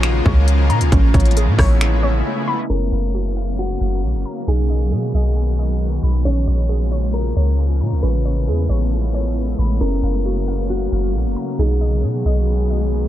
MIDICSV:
0, 0, Header, 1, 6, 480
1, 0, Start_track
1, 0, Key_signature, 6, "major"
1, 0, Tempo, 444444
1, 995, Time_signature, 4, 2, 24, 8
1, 14129, End_track
2, 0, Start_track
2, 0, Title_t, "Synth pluck"
2, 0, Program_c, 0, 84
2, 0, Note_on_c, 0, 61, 91
2, 0, Note_on_c, 0, 68, 79
2, 0, Note_on_c, 0, 73, 88
2, 262, Note_off_c, 0, 73, 0
2, 275, Note_on_c, 0, 73, 88
2, 513, Note_off_c, 0, 61, 0
2, 753, Note_on_c, 0, 82, 90
2, 991, Note_off_c, 0, 68, 0
2, 993, Note_off_c, 0, 82, 0
2, 995, Note_off_c, 0, 73, 0
2, 999, Note_on_c, 0, 61, 95
2, 1234, Note_on_c, 0, 73, 75
2, 1481, Note_on_c, 0, 68, 79
2, 1696, Note_off_c, 0, 73, 0
2, 1709, Note_on_c, 0, 73, 105
2, 2181, Note_off_c, 0, 73, 0
2, 2194, Note_on_c, 0, 73, 85
2, 2437, Note_off_c, 0, 61, 0
2, 2674, Note_on_c, 0, 83, 89
2, 2913, Note_on_c, 0, 61, 90
2, 2914, Note_off_c, 0, 73, 0
2, 2914, Note_off_c, 0, 83, 0
2, 2918, Note_off_c, 0, 68, 0
2, 3157, Note_on_c, 0, 77, 77
2, 3396, Note_on_c, 0, 66, 69
2, 3622, Note_off_c, 0, 77, 0
2, 3635, Note_on_c, 0, 77, 92
2, 4099, Note_off_c, 0, 77, 0
2, 4112, Note_on_c, 0, 77, 79
2, 4354, Note_off_c, 0, 61, 0
2, 4595, Note_on_c, 0, 82, 83
2, 4833, Note_off_c, 0, 77, 0
2, 4835, Note_off_c, 0, 66, 0
2, 4835, Note_off_c, 0, 82, 0
2, 4839, Note_on_c, 0, 63, 91
2, 5074, Note_on_c, 0, 75, 82
2, 5314, Note_on_c, 0, 68, 72
2, 5547, Note_off_c, 0, 75, 0
2, 5560, Note_on_c, 0, 75, 101
2, 6025, Note_off_c, 0, 75, 0
2, 6038, Note_on_c, 0, 75, 79
2, 6277, Note_off_c, 0, 63, 0
2, 6511, Note_on_c, 0, 83, 82
2, 6752, Note_on_c, 0, 61, 86
2, 6753, Note_off_c, 0, 83, 0
2, 6754, Note_off_c, 0, 68, 0
2, 6756, Note_off_c, 0, 75, 0
2, 6993, Note_on_c, 0, 73, 83
2, 7228, Note_on_c, 0, 68, 76
2, 7454, Note_off_c, 0, 73, 0
2, 7467, Note_on_c, 0, 73, 88
2, 7942, Note_off_c, 0, 73, 0
2, 7955, Note_on_c, 0, 73, 88
2, 8193, Note_off_c, 0, 61, 0
2, 8431, Note_on_c, 0, 82, 88
2, 8671, Note_off_c, 0, 68, 0
2, 8673, Note_off_c, 0, 82, 0
2, 8675, Note_off_c, 0, 73, 0
2, 8677, Note_on_c, 0, 61, 90
2, 8912, Note_on_c, 0, 73, 78
2, 9161, Note_on_c, 0, 68, 82
2, 9376, Note_off_c, 0, 73, 0
2, 9389, Note_on_c, 0, 73, 100
2, 9862, Note_off_c, 0, 73, 0
2, 9875, Note_on_c, 0, 73, 80
2, 10116, Note_off_c, 0, 61, 0
2, 10353, Note_on_c, 0, 83, 85
2, 10593, Note_on_c, 0, 61, 87
2, 10594, Note_off_c, 0, 83, 0
2, 10595, Note_off_c, 0, 73, 0
2, 10598, Note_off_c, 0, 68, 0
2, 10837, Note_on_c, 0, 77, 81
2, 11076, Note_on_c, 0, 66, 69
2, 11304, Note_off_c, 0, 77, 0
2, 11317, Note_on_c, 0, 77, 93
2, 11781, Note_off_c, 0, 77, 0
2, 11794, Note_on_c, 0, 77, 78
2, 12034, Note_off_c, 0, 61, 0
2, 12274, Note_on_c, 0, 82, 81
2, 12514, Note_off_c, 0, 77, 0
2, 12514, Note_off_c, 0, 82, 0
2, 12515, Note_off_c, 0, 66, 0
2, 12519, Note_on_c, 0, 63, 91
2, 12754, Note_on_c, 0, 75, 80
2, 12995, Note_on_c, 0, 68, 74
2, 13227, Note_off_c, 0, 75, 0
2, 13240, Note_on_c, 0, 75, 96
2, 13705, Note_off_c, 0, 75, 0
2, 13718, Note_on_c, 0, 75, 79
2, 13957, Note_off_c, 0, 63, 0
2, 14129, Note_off_c, 0, 68, 0
2, 14129, Note_off_c, 0, 75, 0
2, 14129, End_track
3, 0, Start_track
3, 0, Title_t, "Clean electric guitar"
3, 0, Program_c, 1, 27
3, 2915, Note_on_c, 1, 70, 84
3, 3831, Note_off_c, 1, 70, 0
3, 3877, Note_on_c, 1, 66, 92
3, 4327, Note_off_c, 1, 66, 0
3, 4841, Note_on_c, 1, 68, 95
3, 6714, Note_off_c, 1, 68, 0
3, 6753, Note_on_c, 1, 73, 98
3, 7671, Note_off_c, 1, 73, 0
3, 7709, Note_on_c, 1, 70, 71
3, 8163, Note_off_c, 1, 70, 0
3, 8669, Note_on_c, 1, 71, 99
3, 9589, Note_off_c, 1, 71, 0
3, 10595, Note_on_c, 1, 70, 81
3, 11512, Note_off_c, 1, 70, 0
3, 11558, Note_on_c, 1, 66, 89
3, 12007, Note_off_c, 1, 66, 0
3, 12520, Note_on_c, 1, 68, 96
3, 14129, Note_off_c, 1, 68, 0
3, 14129, End_track
4, 0, Start_track
4, 0, Title_t, "Ambient pad"
4, 0, Program_c, 2, 92
4, 0, Note_on_c, 2, 49, 76
4, 0, Note_on_c, 2, 53, 72
4, 0, Note_on_c, 2, 56, 68
4, 0, Note_on_c, 2, 58, 70
4, 0, Note_on_c, 2, 65, 87
4, 956, Note_off_c, 2, 56, 0
4, 976, Note_off_c, 2, 53, 0
4, 976, Note_off_c, 2, 58, 0
4, 976, Note_off_c, 2, 65, 0
4, 995, Note_on_c, 2, 57, 72
4, 996, Note_on_c, 2, 56, 72
4, 996, Note_on_c, 2, 59, 72
4, 996, Note_on_c, 2, 64, 86
4, 2877, Note_off_c, 2, 49, 0
4, 2896, Note_off_c, 2, 56, 0
4, 2896, Note_off_c, 2, 57, 0
4, 2896, Note_off_c, 2, 59, 0
4, 2896, Note_off_c, 2, 64, 0
4, 2915, Note_on_c, 2, 54, 68
4, 2915, Note_on_c, 2, 77, 82
4, 2916, Note_on_c, 2, 49, 73
4, 2916, Note_on_c, 2, 58, 68
4, 4816, Note_off_c, 2, 49, 0
4, 4816, Note_off_c, 2, 58, 0
4, 4816, Note_off_c, 2, 77, 0
4, 4834, Note_on_c, 2, 51, 74
4, 4834, Note_on_c, 2, 56, 72
4, 4834, Note_on_c, 2, 59, 70
4, 4835, Note_on_c, 2, 66, 84
4, 6717, Note_off_c, 2, 54, 0
4, 6735, Note_off_c, 2, 51, 0
4, 6735, Note_off_c, 2, 59, 0
4, 6735, Note_off_c, 2, 66, 0
4, 6753, Note_on_c, 2, 49, 77
4, 6753, Note_on_c, 2, 53, 67
4, 6753, Note_on_c, 2, 58, 69
4, 6753, Note_on_c, 2, 65, 82
4, 8654, Note_off_c, 2, 58, 0
4, 8655, Note_off_c, 2, 53, 0
4, 8655, Note_off_c, 2, 65, 0
4, 8673, Note_on_c, 2, 57, 70
4, 8673, Note_on_c, 2, 64, 82
4, 8674, Note_on_c, 2, 59, 69
4, 10551, Note_off_c, 2, 56, 0
4, 10555, Note_off_c, 2, 49, 0
4, 10575, Note_off_c, 2, 57, 0
4, 10575, Note_off_c, 2, 59, 0
4, 10575, Note_off_c, 2, 64, 0
4, 10593, Note_on_c, 2, 54, 67
4, 10593, Note_on_c, 2, 58, 70
4, 10593, Note_on_c, 2, 77, 80
4, 10594, Note_on_c, 2, 49, 75
4, 12495, Note_off_c, 2, 49, 0
4, 12495, Note_off_c, 2, 58, 0
4, 12495, Note_off_c, 2, 77, 0
4, 12514, Note_on_c, 2, 51, 76
4, 12514, Note_on_c, 2, 56, 66
4, 12514, Note_on_c, 2, 59, 68
4, 12514, Note_on_c, 2, 66, 83
4, 14129, Note_off_c, 2, 51, 0
4, 14129, Note_off_c, 2, 54, 0
4, 14129, Note_off_c, 2, 56, 0
4, 14129, Note_off_c, 2, 59, 0
4, 14129, Note_off_c, 2, 66, 0
4, 14129, End_track
5, 0, Start_track
5, 0, Title_t, "808-style bass"
5, 0, Program_c, 3, 38
5, 0, Note_on_c, 3, 34, 109
5, 235, Note_off_c, 3, 34, 0
5, 277, Note_on_c, 3, 37, 108
5, 754, Note_on_c, 3, 46, 94
5, 770, Note_off_c, 3, 37, 0
5, 874, Note_on_c, 3, 37, 96
5, 891, Note_off_c, 3, 46, 0
5, 988, Note_off_c, 3, 37, 0
5, 995, Note_on_c, 3, 33, 111
5, 1225, Note_off_c, 3, 33, 0
5, 1233, Note_on_c, 3, 33, 109
5, 1594, Note_on_c, 3, 45, 98
5, 1610, Note_off_c, 3, 33, 0
5, 1708, Note_off_c, 3, 45, 0
5, 1713, Note_on_c, 3, 33, 101
5, 2405, Note_off_c, 3, 33, 0
5, 2914, Note_on_c, 3, 30, 107
5, 3145, Note_off_c, 3, 30, 0
5, 3153, Note_on_c, 3, 30, 104
5, 4075, Note_off_c, 3, 30, 0
5, 4112, Note_on_c, 3, 30, 102
5, 4353, Note_on_c, 3, 34, 100
5, 4369, Note_off_c, 3, 30, 0
5, 4473, Note_on_c, 3, 30, 89
5, 4489, Note_off_c, 3, 34, 0
5, 4588, Note_off_c, 3, 30, 0
5, 4834, Note_on_c, 3, 35, 104
5, 5312, Note_on_c, 3, 47, 98
5, 5329, Note_off_c, 3, 35, 0
5, 5541, Note_off_c, 3, 47, 0
5, 5553, Note_on_c, 3, 35, 101
5, 6476, Note_off_c, 3, 35, 0
5, 6513, Note_on_c, 3, 35, 98
5, 6744, Note_off_c, 3, 35, 0
5, 6752, Note_on_c, 3, 34, 104
5, 6984, Note_off_c, 3, 34, 0
5, 6992, Note_on_c, 3, 34, 104
5, 7915, Note_off_c, 3, 34, 0
5, 7953, Note_on_c, 3, 37, 102
5, 8434, Note_on_c, 3, 46, 93
5, 8450, Note_off_c, 3, 37, 0
5, 8553, Note_on_c, 3, 37, 97
5, 8569, Note_off_c, 3, 46, 0
5, 8668, Note_off_c, 3, 37, 0
5, 8672, Note_on_c, 3, 33, 99
5, 9154, Note_on_c, 3, 40, 95
5, 9170, Note_off_c, 3, 33, 0
5, 9382, Note_off_c, 3, 40, 0
5, 9393, Note_on_c, 3, 33, 96
5, 10315, Note_off_c, 3, 33, 0
5, 10352, Note_on_c, 3, 33, 98
5, 10584, Note_off_c, 3, 33, 0
5, 10593, Note_on_c, 3, 30, 110
5, 10824, Note_off_c, 3, 30, 0
5, 10833, Note_on_c, 3, 30, 106
5, 11755, Note_off_c, 3, 30, 0
5, 11794, Note_on_c, 3, 30, 98
5, 12034, Note_on_c, 3, 34, 96
5, 12051, Note_off_c, 3, 30, 0
5, 12155, Note_on_c, 3, 30, 91
5, 12171, Note_off_c, 3, 34, 0
5, 12268, Note_off_c, 3, 30, 0
5, 12515, Note_on_c, 3, 35, 104
5, 12995, Note_on_c, 3, 47, 96
5, 13011, Note_off_c, 3, 35, 0
5, 13223, Note_off_c, 3, 47, 0
5, 13235, Note_on_c, 3, 35, 98
5, 14129, Note_off_c, 3, 35, 0
5, 14129, End_track
6, 0, Start_track
6, 0, Title_t, "Drums"
6, 36, Note_on_c, 9, 26, 106
6, 36, Note_on_c, 9, 42, 64
6, 144, Note_off_c, 9, 26, 0
6, 144, Note_off_c, 9, 42, 0
6, 277, Note_on_c, 9, 36, 98
6, 385, Note_off_c, 9, 36, 0
6, 515, Note_on_c, 9, 42, 77
6, 623, Note_off_c, 9, 42, 0
6, 755, Note_on_c, 9, 42, 51
6, 863, Note_off_c, 9, 42, 0
6, 874, Note_on_c, 9, 42, 81
6, 982, Note_off_c, 9, 42, 0
6, 995, Note_on_c, 9, 36, 109
6, 995, Note_on_c, 9, 42, 71
6, 1103, Note_off_c, 9, 36, 0
6, 1103, Note_off_c, 9, 42, 0
6, 1233, Note_on_c, 9, 36, 96
6, 1234, Note_on_c, 9, 42, 56
6, 1295, Note_off_c, 9, 42, 0
6, 1295, Note_on_c, 9, 42, 55
6, 1341, Note_off_c, 9, 36, 0
6, 1355, Note_off_c, 9, 42, 0
6, 1355, Note_on_c, 9, 42, 57
6, 1415, Note_off_c, 9, 42, 0
6, 1415, Note_on_c, 9, 42, 54
6, 1477, Note_off_c, 9, 42, 0
6, 1477, Note_on_c, 9, 42, 78
6, 1585, Note_off_c, 9, 42, 0
6, 1713, Note_on_c, 9, 36, 95
6, 1713, Note_on_c, 9, 46, 56
6, 1720, Note_on_c, 9, 37, 98
6, 1821, Note_off_c, 9, 36, 0
6, 1821, Note_off_c, 9, 46, 0
6, 1828, Note_off_c, 9, 37, 0
6, 1956, Note_on_c, 9, 26, 106
6, 1957, Note_on_c, 9, 42, 66
6, 2064, Note_off_c, 9, 26, 0
6, 2065, Note_off_c, 9, 42, 0
6, 14129, End_track
0, 0, End_of_file